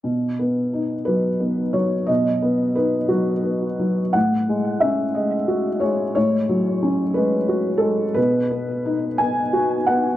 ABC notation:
X:1
M:6/8
L:1/8
Q:3/8=59
K:Bmix
V:1 name="Felt piano"
z3 B2 c | d2 B F3 | f2 e d2 c | c3 B2 A |
B3 g2 f |]
V:2 name="Felt piano"
B,, B, D F, B, F, | B,, B, D F, B, F, | A,, G, C G, F G, | A,, F, C G, F G, |
B,, B, D B, F B, |]